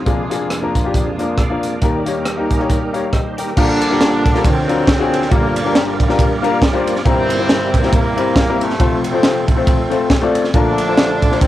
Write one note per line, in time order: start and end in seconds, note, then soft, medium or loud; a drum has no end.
0.00 1.78 G#3 medium
0.00 1.79 F4 medium
0.06 1.78 F1 medium
0.06 1.80 F2 medium
0.06 1.78 F2 medium
0.06 1.79 F3 medium
0.06 0.22 A#3 medium
0.06 3.54 A#3 medium
0.06 1.79 A#3 medium
0.06 0.12 C4 soft
0.06 1.80 D4 medium
0.06 0.22 D4 medium
0.06 0.22 F4 medium
0.06 1.79 G#4 medium
0.06 0.22 G#4 medium
0.06 kick medium
0.06 closed hi-hat medium
0.12 1.81 D4 medium
0.30 0.49 A#3 medium
0.30 0.49 D4 medium
0.30 0.49 F4 medium
0.30 0.50 G#4 medium
0.30 closed hi-hat medium
0.50 cross-stick medium
0.50 closed hi-hat medium
0.62 0.77 A#3 medium
0.62 0.77 D4 medium
0.62 0.78 F4 medium
0.62 0.78 A#4 medium
0.75 kick medium
0.75 closed hi-hat medium
0.84 1.05 A#3 medium
0.84 1.05 D4 medium
0.84 1.05 F4 medium
0.84 1.06 G4 medium
0.94 kick medium
0.94 closed hi-hat medium
1.19 1.37 A#3 medium
1.19 1.37 D4 medium
1.19 1.37 F4 medium
1.19 1.38 A#4 medium
1.19 closed hi-hat medium
1.38 1.62 D5 medium
1.38 1.62 F5 medium
1.38 kick medium
1.38 cross-stick medium
1.38 closed hi-hat medium
1.50 1.71 A#3 medium
1.50 1.71 D4 medium
1.50 1.72 F4 medium
1.50 1.72 A#4 medium
1.63 1.80 A#4 soft
1.63 2.05 D5 medium
1.63 closed hi-hat medium
1.81 3.54 D#2 medium
1.81 3.53 D#3 medium
1.81 3.53 G3 medium
1.81 3.55 G3 medium
1.81 3.53 A#3 medium
1.81 1.97 A#3 medium
1.81 3.53 D#4 medium
1.81 3.55 D#4 medium
1.81 1.98 D#4 medium
1.81 3.56 G4 medium
1.81 1.98 G4 medium
1.81 3.11 A#4 medium
1.81 1.98 A#4 medium
1.81 kick medium
1.81 closed hi-hat medium
2.06 2.24 A#3 medium
2.06 2.24 D#4 medium
2.06 2.25 G4 medium
2.06 2.25 C#5 medium
2.06 closed hi-hat medium
2.25 cross-stick medium
2.25 closed hi-hat medium
2.37 2.53 A#3 medium
2.37 2.53 D#4 medium
2.37 2.53 G4 medium
2.37 2.54 A#4 medium
2.50 2.68 G#5 medium
2.50 kick medium
2.50 closed hi-hat medium
2.59 2.80 A#3 medium
2.59 2.80 D#4 medium
2.59 2.81 G4 medium
2.59 2.81 C#5 medium
2.59 cross-stick soft
2.70 2.93 G5 medium
2.70 kick medium
2.70 closed hi-hat medium
2.93 3.11 A#3 medium
2.93 3.12 D#4 medium
2.93 3.12 G4 medium
2.93 3.13 C#5 medium
2.93 3.12 F5 medium
2.93 closed hi-hat soft
3.13 3.37 G4 soft
3.13 3.37 C5 medium
3.13 3.37 D#5 medium
3.13 kick medium
3.13 cross-stick medium
3.13 closed hi-hat medium
3.37 3.79 G4 soft
3.37 3.56 A#4 medium
3.37 3.57 A#4 medium
3.37 3.80 G5 medium
3.37 closed hi-hat medium
3.47 cross-stick soft
3.57 4.41 A#1 medium
3.57 4.41 A#2 medium
3.57 4.41 D3 loud
3.57 4.41 F3 medium
3.57 4.43 G3 medium
3.57 4.41 G3 medium
3.57 3.80 A#3 medium
3.57 4.43 A#3 medium
3.57 3.80 D4 medium
3.57 4.41 D4 loud
3.57 4.43 D4 medium
3.57 3.81 F4 medium
3.57 4.43 F4 medium
3.57 3.81 G4 medium
3.57 4.43 A#4 medium
3.57 3.81 A#4 medium
3.57 kick loud
3.57 crash loud
3.81 ride medium
3.90 4.19 A#3 medium
3.90 4.19 D4 medium
3.90 4.19 F4 medium
3.90 4.20 G4 medium
3.90 4.20 A#4 medium
4.01 snare loud
4.01 ride medium
4.26 kick medium
4.26 ride medium
4.34 4.44 A#3 medium
4.34 4.44 D4 medium
4.34 4.44 F4 medium
4.34 4.45 G4 medium
4.34 4.45 A#4 medium
4.34 snare soft
4.44 5.27 D2 medium
4.44 5.27 D3 medium
4.44 4.50 F3 medium
4.44 5.28 F3 medium
4.44 5.28 F#3 medium
4.44 5.30 C4 medium
4.44 5.32 C4 loud
4.44 5.30 D4 medium
4.44 5.30 F4 medium
4.44 5.30 A#4 medium
4.44 kick loud
4.44 ride medium
4.50 5.32 D3 medium
4.68 4.86 C4 medium
4.68 4.86 D4 medium
4.68 4.87 F4 medium
4.68 4.87 F#4 medium
4.68 4.87 A#4 medium
4.68 ride medium
4.88 kick loud
4.88 snare loud
4.88 ride medium
4.99 5.20 C4 loud
4.99 5.20 D4 medium
4.99 5.21 F4 medium
4.99 5.21 F#4 medium
4.99 5.21 G#4 loud
5.14 ride medium
5.22 snare soft
5.30 7.02 G1 medium
5.30 7.02 G2 medium
5.30 5.75 D3 medium
5.30 6.15 F3 medium
5.30 7.02 G3 medium
5.30 5.54 A#3 medium
5.30 7.02 A#3 medium
5.30 5.55 A#3 medium
5.30 5.54 D4 medium
5.30 7.02 D4 medium
5.30 5.54 F4 medium
5.30 7.02 F4 medium
5.30 5.55 G4 medium
5.30 5.37 A4 medium
5.30 5.55 A#4 medium
5.30 kick loud
5.30 ride medium
5.37 7.04 A#4 medium
5.56 5.74 A#3 loud
5.56 ride medium
5.65 5.93 A#3 medium
5.65 5.93 D4 medium
5.65 5.94 F4 medium
5.65 5.94 G4 medium
5.65 5.94 A#4 medium
5.75 6.59 A#2 medium
5.75 6.58 D3 medium
5.75 6.63 G3 medium
5.75 snare loud
5.75 ride medium
6.00 kick medium
6.00 ride medium
6.08 6.29 A#3 medium
6.08 6.29 D4 medium
6.08 6.29 F4 medium
6.08 6.30 G4 medium
6.08 6.30 A#4 medium
6.08 snare soft
6.19 kick loud
6.19 ride medium
6.42 6.60 A#3 loud
6.42 6.61 D4 medium
6.42 6.61 F4 medium
6.42 6.61 G4 medium
6.42 6.62 A#4 loud
6.42 6.61 F5 medium
6.42 ride soft
6.62 7.03 D5 medium
6.62 kick loud
6.62 snare loud
6.62 ride medium
6.73 6.94 A#3 loud
6.73 6.95 D4 medium
6.73 6.95 F4 medium
6.73 6.95 G4 medium
6.73 6.95 C5 loud
6.87 ride medium
6.96 snare soft
7.05 8.76 G1 medium
7.05 8.76 G2 medium
7.05 7.89 C3 loud
7.05 7.89 E3 medium
7.05 8.76 G3 medium
7.05 7.28 A#3 medium
7.05 8.76 A#3 medium
7.05 8.76 C4 medium
7.05 7.29 C4 medium
7.05 7.89 C4 loud
7.05 8.76 E4 medium
7.05 7.29 E4 medium
7.05 7.29 G4 medium
7.05 8.76 A#4 medium
7.05 7.29 A#4 medium
7.05 kick loud
7.05 ride medium
7.30 ride medium
7.39 7.67 A#3 medium
7.39 7.67 C4 medium
7.39 7.67 E4 medium
7.39 7.68 G4 medium
7.39 7.68 C5 medium
7.49 snare loud
7.49 ride medium
7.74 kick medium
7.74 ride medium
7.82 8.03 A#3 medium
7.82 8.03 C4 medium
7.82 8.04 E4 medium
7.82 8.04 G4 medium
7.82 8.04 A#4 medium
7.82 snare soft
7.93 8.76 E3 medium
7.93 8.57 A#3 loud
7.93 kick loud
7.93 ride medium
8.16 8.35 A#3 medium
8.16 8.35 C4 medium
8.16 8.35 E4 medium
8.16 8.35 G4 medium
8.16 8.36 C5 medium
8.16 ride medium
8.36 kick loud
8.36 snare loud
8.36 ride medium
8.48 8.69 A#3 medium
8.48 8.69 C4 medium
8.48 8.69 E4 medium
8.48 8.69 G4 medium
8.48 8.70 A#4 medium
8.61 9.45 C3 medium
8.61 9.05 F3 medium
8.61 9.04 A3 loud
8.61 ride medium
8.70 snare soft
8.79 10.50 F1 medium
8.79 10.50 F2 medium
8.79 9.03 A3 medium
8.79 10.51 A3 medium
8.79 9.03 C4 medium
8.79 10.51 C4 medium
8.79 9.03 F4 medium
8.79 10.51 F4 medium
8.79 9.03 A4 medium
8.79 9.04 C5 medium
8.79 kick loud
8.79 ride medium
9.04 9.48 F3 medium
9.04 9.48 A3 medium
9.04 9.47 C4 loud
9.04 ride medium
9.13 9.41 A3 medium
9.13 9.42 C4 medium
9.13 9.42 F4 medium
9.13 9.42 A4 medium
9.13 9.42 C5 medium
9.23 snare loud
9.23 ride medium
9.48 10.32 F3 medium
9.48 10.32 A3 medium
9.48 10.31 C4 medium
9.48 kick medium
9.48 ride medium
9.56 9.77 A3 medium
9.56 9.77 C4 medium
9.56 9.77 F4 medium
9.56 9.78 A4 medium
9.56 9.78 C5 medium
9.67 kick loud
9.67 ride medium
9.90 10.08 A3 medium
9.90 10.09 C4 medium
9.90 10.09 F4 medium
9.90 10.09 A4 medium
9.90 10.09 C5 medium
9.90 ride soft
10.10 kick medium
10.10 snare loud
10.10 ride medium
10.22 10.43 A3 medium
10.22 10.43 C4 medium
10.22 10.43 F4 medium
10.22 10.43 A4 medium
10.22 10.44 D5 loud
10.35 ride medium
10.44 snare soft
10.54 11.47 A#1 medium
10.54 11.47 A#2 medium
10.54 11.47 D3 medium
10.54 11.37 D3 loud
10.54 11.47 F3 medium
10.54 11.38 F3 medium
10.54 11.47 A3 medium
10.54 11.38 A3 medium
10.54 10.77 A#3 medium
10.54 11.47 D4 medium
10.54 10.77 D4 medium
10.54 11.37 D4 loud
10.54 11.47 F4 medium
10.54 10.77 F4 medium
10.54 10.78 A4 medium
10.54 10.78 A#4 medium
10.54 kick loud
10.54 ride medium
10.78 ride medium
10.87 11.16 A#3 medium
10.87 11.16 D4 medium
10.87 11.16 F4 medium
10.87 11.17 A4 medium
10.87 11.17 C5 medium
10.97 snare loud
10.97 ride medium
11.22 kick medium
11.22 ride medium
11.31 11.47 A#3 medium
11.31 11.47 D4 medium
11.31 11.47 F4 medium
11.31 11.47 A4 medium
11.31 11.47 C5 medium
11.31 snare soft
11.41 11.47 F3 medium
11.41 11.47 A3 medium
11.41 11.47 C4 loud
11.41 kick loud
11.41 ride medium